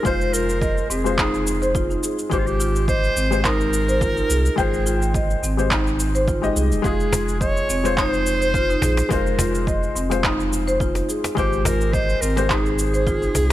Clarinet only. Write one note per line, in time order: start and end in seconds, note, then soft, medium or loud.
0.05 0.35 C5 loud
0.33 0.89 A#4 loud
0.90 1.99 G#4 medium
2.32 2.40 G4 loud
2.39 2.49 F4 medium
2.47 2.88 G4 loud
2.88 3.46 C5 loud
3.45 4.59 A#4 loud
4.58 5.14 G#4 loud
6.84 7.37 G#4 loud
7.40 7.99 C#5 loud
7.97 9.12 C5 loud
9.10 9.67 A#4 medium
11.37 11.67 G4 loud
11.65 11.95 A#4 loud
11.93 12.23 C5 loud
12.21 12.49 A#4 loud
12.50 13.53 G#4 loud